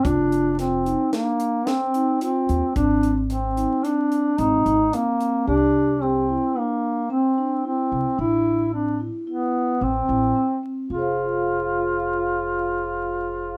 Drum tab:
HH |xxxxxxxxxx|xxxxxxxxxx|----------|----------|
SD |--o-o-o---|----------|----------|----------|
BD |o---------|o---------|----------|----------|

HH |----------|
SD |----------|
BD |----------|